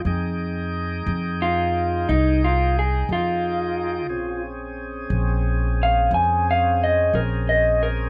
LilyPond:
<<
  \new Staff \with { instrumentName = "Clean electric guitar" } { \time 12/8 \key f \minor \tempo 4. = 59 r2 f'4 ees'8 f'8 aes'8 f'4.~ | f'8 r2 f''8 aes''8 f''8 ees''8 bes'8 ees''8 bes'8 | }
  \new Staff \with { instrumentName = "Tonewheel organ" } { \time 12/8 \key f \minor <ees' aes' g''>1. | <c' des' aes'>1. | }
  \new Staff \with { instrumentName = "Upright bass" } { \clef bass \time 12/8 \key f \minor f,4. f,4. c,4. f,4. | bes,,4. bes,,4. f,4. bes,,4. | }
>>